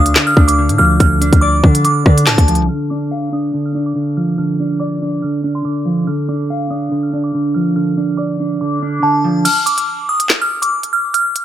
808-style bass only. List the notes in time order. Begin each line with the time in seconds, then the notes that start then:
Already playing: D2
0.37 D2
0.69 A2
0.79 D2
1.00 D2
1.33 D2
1.64 D3
2.06 D3
2.27 A2
2.38 D2
2.59 C2